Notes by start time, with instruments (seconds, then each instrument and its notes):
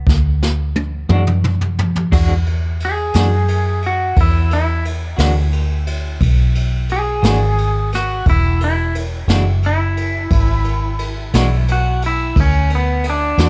0.07 fingered electric bass D2, kick, snare
0.43 snare
0.76 high tom
1.09 fingered electric bass F#2, clean electric guitar E3 G#3 D4 F#4, mid tom
1.27 mid tom
1.44 mid tom
1.61 floor tom
1.79 floor tom
1.95 floor tom
2.12 fingered electric bass E2, clean electric guitar E3 G#3 D4 F#4, kick, crash
2.46 ride
2.80 ride
2.85 clean electric guitar G#4
3.14 fingered electric bass F#2, clean electric guitar E3 G#3 D4 F#4, snare, ride
3.48 ride
3.82 ride
3.86 clean electric guitar F#4
4.16 fingered electric bass E2, kick, ride
4.21 clean electric guitar E4
4.51 clean electric guitar E4, ride
4.85 ride
5.17 fingered electric bass D2, clean electric guitar E3 G#3 D4 F#4, snare, ride
5.53 ride
5.87 ride
6.21 fingered electric bass B1, kick, ride
6.55 ride
6.89 clean electric guitar G#4, ride
7.22 fingered electric bass G#1, clean electric guitar E3 G#3 D4 F#4, snare, ride
7.58 ride
7.92 clean electric guitar F#4, snare, ride
8.26 fingered electric bass E1, clean electric guitar E4, kick, ride
8.61 clean electric guitar E4, ride
8.95 ride
9.27 fingered electric bass F#1, clean electric guitar E3 G#3 D4 F#4, snare, ride
9.63 clean electric guitar E4, ride
9.97 ride
10.30 fingered electric bass G#1, kick, ride
10.64 ride
10.99 ride
11.33 fingered electric bass B1, clean electric guitar E3 G#3 D4 F#4, snare, ride
11.68 clean electric guitar F#4, ride
12.02 ride
12.06 clean electric guitar E4
12.36 fingered electric bass D2, kick, ride
12.40 clean electric guitar C#4
12.70 ride
12.75 clean electric guitar B3
13.04 ride
13.10 clean electric guitar D4
13.38 fingered electric bass E2, clean electric guitar E3 G#3 D4 F#4, snare, ride